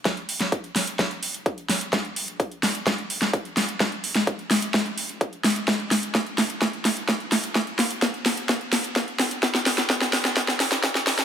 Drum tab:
HH |xxoxxxoxxxoxxxox|xxoxxxoxxxoxxxox|xxoxxxoxxxoxxxox|xxoxxxoxxxoxxxox|
SD |o--o--o-o-----o-|o-----o-o--o--o-|o--o--o-o-----o-|o-o-o-o-o-o-o-o-|
BD |o---o---o---o---|o---o---o---o---|o---o---o---o---|o---o---o---o---|

HH |xxoxxxoxxxoxxxox|xxoxxxoxxxoxxxox|
SD |o-o-o-o-o-o-o-o-|oooooooooooooooo|
BD |o---o---o---o---|o---o---o---o---|